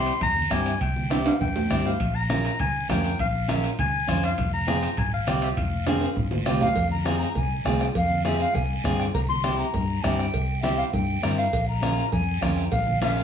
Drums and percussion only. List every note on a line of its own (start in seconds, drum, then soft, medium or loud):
0.06 high timbale medium
0.06 short guiro medium
0.21 bombo low medium
0.21 high conga soft
0.21 low conga medium
0.21 high timbale medium
0.21 long guiro medium
0.36 high conga medium
0.51 bombo low medium
0.51 bombo rim medium
0.51 high conga medium
0.51 high timbale medium
0.51 short guiro medium
0.66 bombo rim medium
0.66 high timbale medium
0.66 short guiro medium
0.81 bombo low medium
0.81 high conga soft
0.81 high timbale medium
0.81 long guiro medium
0.96 high conga medium
1.10 bombo rim medium
1.10 high conga medium
1.10 high timbale medium
1.10 short guiro medium
1.26 high timbale loud
1.26 short guiro medium
1.41 bombo low medium
1.41 high conga soft
1.41 low conga medium
1.41 high timbale medium
1.41 long guiro medium
1.56 low timbale medium
1.70 bombo low medium
1.70 bombo rim medium
1.70 high conga medium
1.70 short guiro medium
1.85 low timbale medium
1.85 short guiro medium
2.00 bombo low medium
2.00 high conga soft
2.00 high timbale medium
2.00 long guiro medium
2.30 bombo rim medium
2.30 high conga medium
2.30 high timbale medium
2.30 short guiro medium
2.45 high timbale medium
2.45 short guiro medium
2.59 bombo low medium
2.59 high conga soft
2.59 low conga medium
2.59 high timbale medium
2.59 long guiro medium
2.90 bombo low medium
2.90 bombo rim medium
2.90 high conga medium
2.90 low conga medium
2.90 high timbale medium
2.90 low timbale medium
2.90 short guiro medium
3.04 high timbale medium
3.04 short guiro medium
3.19 bombo low medium
3.19 high conga soft
3.19 low conga medium
3.19 high timbale medium
3.19 long guiro medium
3.49 bombo rim medium
3.49 high conga medium
3.49 high timbale medium
3.49 short guiro medium
3.64 high timbale medium
3.64 short guiro medium
3.79 bombo low medium
3.79 high conga soft
3.79 low conga medium
3.79 high timbale medium
3.79 long guiro medium
4.08 bombo low medium
4.08 bombo rim medium
4.08 high conga medium
4.08 low conga medium
4.08 high timbale medium
4.08 short guiro medium
4.23 bombo rim medium
4.23 high timbale medium
4.23 short guiro medium
4.38 bombo low medium
4.38 high conga soft
4.38 low conga medium
4.38 high timbale medium
4.38 long guiro medium
4.68 bombo rim medium
4.68 high conga medium
4.68 high timbale medium
4.68 short guiro medium
4.83 high timbale medium
4.83 short guiro medium
4.97 bombo low medium
4.97 high conga soft
4.97 low conga medium
4.97 high timbale medium
4.97 long guiro medium
5.27 bombo rim medium
5.27 high conga medium
5.27 high timbale medium
5.27 short guiro medium
5.42 bombo rim medium
5.42 high timbale medium
5.42 short guiro medium
5.57 bombo low medium
5.57 high conga soft
5.57 low conga medium
5.57 high timbale medium
5.57 long guiro medium
5.86 bombo rim medium
5.86 high conga loud
5.86 high timbale medium
5.86 short guiro medium
6.01 high timbale medium
6.01 short guiro medium
6.16 bombo low medium
6.16 high conga soft
6.16 low conga medium
6.16 long guiro medium
6.31 high conga medium
6.31 low timbale medium
6.46 bombo rim medium
6.46 high conga loud
6.46 low timbale medium
6.46 short guiro medium
6.61 low conga medium
6.61 low timbale medium
6.61 short guiro medium
6.76 bombo low medium
6.76 cowbell loud
6.76 high conga soft
6.76 long guiro medium
6.91 high conga medium
7.05 bombo rim medium
7.05 high conga loud
7.05 short guiro medium
7.21 short guiro medium
7.35 bombo low medium
7.35 cowbell medium
7.35 high conga soft
7.35 low conga medium
7.35 long guiro medium
7.65 bombo low medium
7.65 bombo rim medium
7.65 high conga medium
7.65 low timbale medium
7.65 short guiro medium
7.80 bombo rim medium
7.80 short guiro medium
7.95 bombo low medium
7.95 cowbell loud
7.95 high conga soft
7.95 long guiro medium
8.10 high conga medium
8.25 bombo rim medium
8.25 high conga loud
8.25 short guiro medium
8.40 short guiro medium
8.55 bombo low medium
8.55 cowbell medium
8.55 high conga soft
8.55 low conga medium
8.55 long guiro medium
8.84 bombo low medium
8.84 bombo rim medium
8.84 high conga medium
8.84 low conga medium
8.84 short guiro medium
9.00 bombo rim medium
9.00 short guiro medium
9.14 bombo low medium
9.14 cowbell loud
9.14 high conga soft
9.14 long guiro medium
9.29 high conga medium
9.44 bombo rim medium
9.44 high conga medium
9.44 short guiro medium
9.59 short guiro medium
9.74 bombo low medium
9.74 cowbell medium
9.74 high conga soft
9.74 low conga medium
9.74 long guiro medium
10.04 bombo low medium
10.04 bombo rim medium
10.04 high conga medium
10.04 short guiro medium
10.19 bombo rim medium
10.19 short guiro medium
10.34 bombo low medium
10.34 cowbell loud
10.34 high conga soft
10.34 long guiro medium
10.63 bombo rim medium
10.63 high conga medium
10.63 short guiro medium
10.79 short guiro medium
10.93 bombo low medium
10.93 cowbell medium
10.93 high conga soft
10.93 low conga medium
10.93 long guiro medium
11.23 bombo rim medium
11.23 high conga medium
11.23 short guiro medium
11.38 short guiro medium
11.53 bombo low medium
11.53 cowbell loud
11.53 high conga soft
11.53 long guiro medium
11.83 bombo rim medium
11.83 high conga medium
11.83 short guiro medium
11.98 short guiro medium
12.12 bombo low medium
12.12 cowbell medium
12.12 high conga soft
12.12 low conga medium
12.12 long guiro medium
12.43 bombo low medium
12.43 bombo rim medium
12.43 high conga medium
12.43 short guiro medium
12.58 short guiro medium
12.72 bombo low medium
12.72 cowbell loud
12.72 high conga soft
12.72 low conga medium
12.72 long guiro medium
12.87 high conga medium
13.02 bombo rim medium
13.02 high conga loud
13.02 short guiro medium
13.17 short guiro medium